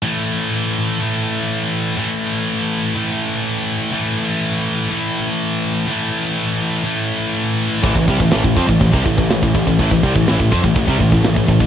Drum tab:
CC |----------------|----------------|----------------|----------------|
SD |----------------|----------------|----------------|----------------|
BD |----------------|----------------|----------------|----------------|

CC |x-x-x-x-x-x-x-x-|x-x-x-x-x-x-x-x-|
SD |----o-------o---|----o-------o---|
BD |oooo-ooooooo-ooo|oooo-ooooooo-ooo|